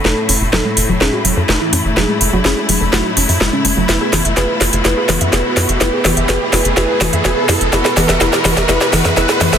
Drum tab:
HH |--o---o---o---o-|--o---o---oo--o-|x-oxx-oxx-oxx-ox|x-oxx-oxx-oxx-ox|
SD |o---o---o---o---|o---o---o---o---|o-o-o-o-o-o-o-o-|o-o-o-o-o-o-o-o-|

HH |x-oxx-oxx-oxx-ox|
SD |oooooooooooooooo|